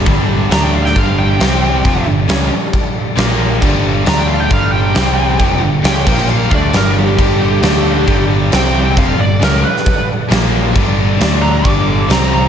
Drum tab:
CC |x---x---x---x---|x---x---x---x---|x---x---x---x---|x---x-x-x---x---|
SD |----o--o----o---|----o-------o---|----o-------o---|----o--o----o---|
BD |o-------o-------|o-------o-------|o-------o-------|o-----o---o-----|

CC |x---x---x---x---|x---x---x---x---|x---x---x---x---|
SD |----o-------o---|----o--o----o---|----o-------o---|
BD |o-------o-------|o-------o-------|o-------o-------|